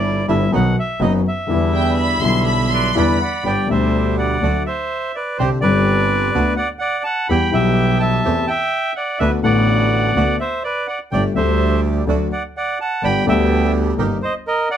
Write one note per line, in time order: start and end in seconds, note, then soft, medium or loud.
0.00 0.24 G1 medium
0.00 0.25 G1 medium
0.00 0.24 G2 medium
0.00 0.23 D3 medium
0.00 0.24 G3 medium
0.00 0.25 G3 medium
0.00 0.25 B3 medium
0.00 0.25 D4 medium
0.00 0.25 E4 medium
0.00 0.26 E4 medium
0.00 0.26 D5 medium
0.28 0.49 G1 medium
0.28 0.49 G2 medium
0.28 0.49 D3 medium
0.28 0.48 G3 medium
0.28 0.49 G3 medium
0.28 0.49 B3 medium
0.28 0.48 D4 medium
0.28 0.49 E4 medium
0.28 0.51 E5 medium
0.52 0.73 B1 medium
0.52 0.73 B2 medium
0.52 0.72 D#3 medium
0.52 0.73 F#3 medium
0.52 0.73 B3 medium
0.52 0.73 D#4 medium
0.52 0.73 F#4 medium
0.52 0.76 F#5 medium
0.79 1.01 E5 medium
1.00 1.21 F#1 medium
1.00 1.21 F#2 medium
1.00 1.21 D#3 medium
1.00 1.21 F#3 medium
1.00 1.21 B3 medium
1.00 1.21 D#4 medium
1.00 1.21 F#4 medium
1.00 1.13 D#5 medium
1.28 2.93 E5 medium
1.47 2.18 E2 medium
1.47 2.17 D3 medium
1.47 2.18 E3 medium
1.47 2.18 G3 medium
1.47 2.18 B3 medium
1.47 2.18 D4 medium
1.47 2.19 E4 medium
1.74 1.96 G5 medium
1.97 2.20 B5 medium
2.20 2.92 B1 medium
2.20 2.92 B2 medium
2.20 2.91 D3 medium
2.20 2.91 G3 medium
2.20 2.92 G3 medium
2.20 2.92 B3 medium
2.20 2.92 D4 medium
2.20 2.92 E4 medium
2.20 2.93 E4 medium
2.20 2.46 C6 medium
2.45 2.69 B5 medium
2.71 2.96 B4 medium
2.71 2.95 D5 medium
2.71 2.96 C6 medium
2.95 3.16 E2 medium
2.95 3.17 E2 medium
2.95 3.16 D3 medium
2.95 3.16 E3 medium
2.95 3.16 G3 medium
2.95 3.17 G3 medium
2.95 3.16 B3 medium
2.95 3.17 D4 medium
2.95 3.16 E4 medium
2.95 3.17 E4 medium
2.95 3.20 B4 soft
2.95 3.20 D5 medium
2.95 3.44 B5 medium
3.21 3.44 D5 medium
3.21 3.43 F#5 medium
3.43 3.64 G1 soft
3.43 3.65 G1 soft
3.43 3.65 G2 soft
3.43 3.64 D3 soft
3.43 3.65 G3 soft
3.43 3.65 B3 soft
3.43 3.65 D4 soft
3.43 3.65 G4 soft
3.43 3.66 G4 medium
3.43 3.68 G5 medium
3.47 3.69 D5 medium
3.67 4.38 D2 medium
3.67 4.39 D2 medium
3.67 4.39 B2 soft
3.67 3.68 D3 medium
3.67 4.38 D3 medium
3.67 4.38 G3 medium
3.67 4.39 G3 medium
3.67 4.39 D4 medium
3.67 4.39 G4 medium
3.71 4.39 G4 medium
3.71 4.16 C5 medium
3.71 4.15 E5 medium
4.18 4.63 D5 medium
4.18 4.63 F#5 medium
4.42 4.63 D2 soft
4.42 4.63 D2 medium
4.42 4.63 D3 medium
4.42 4.62 F#3 soft
4.42 4.62 A3 soft
4.42 4.63 A3 soft
4.42 4.62 D4 soft
4.42 4.63 F#4 medium
4.42 4.63 F#4 soft
4.66 5.12 C5 medium
4.66 5.16 E5 medium
5.15 5.38 B4 medium
5.15 5.37 D5 medium
5.38 5.59 C2 medium
5.38 5.59 C2 soft
5.38 5.59 C3 soft
5.38 5.59 D3 soft
5.38 5.59 G3 soft
5.38 5.59 C4 soft
5.38 5.59 D4 soft
5.38 5.59 G4 medium
5.38 5.50 G4 medium
5.38 5.60 G4 soft
5.38 5.49 C5 medium
5.61 6.30 G1 medium
5.61 6.31 G1 medium
5.61 6.31 G2 medium
5.61 6.30 D3 medium
5.61 6.30 G3 medium
5.61 6.30 C4 medium
5.61 6.31 C4 medium
5.61 6.31 D4 medium
5.61 6.31 G4 medium
5.61 6.54 B4 medium
5.61 6.53 D5 medium
5.65 6.32 G4 medium
6.34 6.54 D2 medium
6.34 6.54 D3 medium
6.34 6.54 A3 soft
6.34 6.54 B3 medium
6.34 6.54 B3 soft
6.34 6.54 D4 soft
6.34 6.54 F#4 medium
6.34 6.54 F#4 soft
6.56 6.69 D5 medium
6.56 6.67 F#5 medium
6.79 7.03 D5 medium
6.79 7.02 F#5 medium
7.04 7.28 F#5 medium
7.04 7.27 A5 medium
7.29 7.49 E2 medium
7.29 7.50 E2 medium
7.29 7.49 E3 medium
7.29 7.49 G3 soft
7.29 7.49 B3 medium
7.29 7.50 B3 soft
7.29 7.49 E4 soft
7.29 7.49 G4 medium
7.29 7.50 G4 medium
7.29 7.50 G5 medium
7.29 7.54 B5 medium
7.52 8.21 B1 medium
7.52 8.21 B2 medium
7.52 8.20 E3 medium
7.52 8.21 G3 medium
7.52 8.21 B3 medium
7.52 8.21 E4 medium
7.52 8.21 G4 medium
7.52 8.22 G4 medium
7.52 7.98 E5 medium
7.52 8.01 G5 medium
8.00 8.46 E5 medium
8.00 8.49 A5 medium
8.24 8.45 E2 medium
8.24 8.44 E3 medium
8.24 8.45 A3 medium
8.24 8.45 A3 soft
8.24 8.45 C4 soft
8.24 8.45 G4 medium
8.47 8.94 E5 medium
8.47 8.92 G5 loud
8.96 9.19 D5 medium
8.96 9.18 F#5 medium
9.19 9.40 D2 medium
9.19 9.40 D3 soft
9.19 9.40 A3 soft
9.19 9.40 B3 medium
9.19 9.40 B3 soft
9.19 9.40 D4 soft
9.19 9.40 F#4 medium
9.19 9.32 B4 medium
9.19 9.30 E5 medium
9.42 10.12 A1 medium
9.42 10.12 A2 medium
9.42 10.11 D3 medium
9.42 10.12 A3 medium
9.42 10.12 B3 medium
9.42 10.12 D4 medium
9.42 10.12 F#4 medium
9.42 10.36 D5 medium
9.42 10.36 F#5 medium
9.46 10.13 F#4 medium
10.15 10.36 D2 medium
10.15 10.35 D3 soft
10.15 10.35 A3 soft
10.15 10.36 B3 soft
10.15 10.36 B3 medium
10.15 10.36 D4 soft
10.15 10.36 F#4 soft
10.15 10.36 F#4 medium
10.40 10.63 C5 medium
10.40 10.62 E5 medium
10.64 10.87 B4 medium
10.64 10.87 D5 medium
10.87 10.99 D5 medium
10.87 10.98 F#5 medium
11.11 11.32 G1 soft
11.11 11.33 G1 medium
11.11 11.33 G2 medium
11.11 11.32 D3 soft
11.11 11.32 G3 soft
11.11 11.32 A3 soft
11.11 11.32 D4 soft
11.11 11.33 G4 soft
11.11 11.33 G4 medium
11.11 11.24 D5 medium
11.11 11.22 G5 medium
11.34 12.04 D2 medium
11.34 11.35 D3 medium
11.34 12.04 D3 medium
11.34 12.04 G3 medium
11.34 12.04 A3 medium
11.34 12.05 A3 medium
11.34 12.04 D4 medium
11.34 12.05 G4 medium
11.34 11.81 C5 medium
11.34 11.80 E5 medium
12.06 12.28 D2 medium
12.06 12.28 D2 soft
12.06 12.27 D3 soft
12.06 12.27 F#3 soft
12.06 12.28 A3 soft
12.06 12.28 D4 soft
12.06 12.28 F#4 soft
12.06 12.28 F#4 medium
12.32 12.43 D5 medium
12.32 12.43 F#5 medium
12.57 12.79 D5 medium
12.57 12.78 F#5 medium
12.81 13.02 F#5 medium
12.81 13.04 A5 medium
13.02 13.23 G1 medium
13.02 13.23 G2 medium
13.02 13.23 D3 soft
13.02 13.23 G3 soft
13.02 13.23 B3 soft
13.02 13.23 B3 medium
13.02 13.23 D4 medium
13.02 13.23 G4 soft
13.02 13.23 G4 medium
13.02 13.25 G5 medium
13.02 13.26 B5 loud
13.25 13.94 D2 medium
13.25 13.26 D3 medium
13.25 13.94 D3 medium
13.25 13.94 G3 medium
13.25 13.94 B3 medium
13.25 13.95 B3 medium
13.25 13.94 D4 medium
13.25 13.94 G4 medium
13.25 13.95 G4 medium
13.25 13.72 E5 medium
13.25 13.72 G5 medium
13.97 14.18 G1 medium
13.97 14.18 G2 medium
13.97 14.18 D#3 soft
13.97 14.18 G3 soft
13.97 14.18 A#3 medium
13.97 14.18 A#3 soft
13.97 14.18 D#4 medium
13.97 14.18 G4 medium
14.23 14.33 C5 medium
14.23 14.35 D#5 medium
14.47 14.68 A#4 medium
14.47 14.69 D#5 medium
14.71 14.77 D5 medium
14.71 14.77 F#5 medium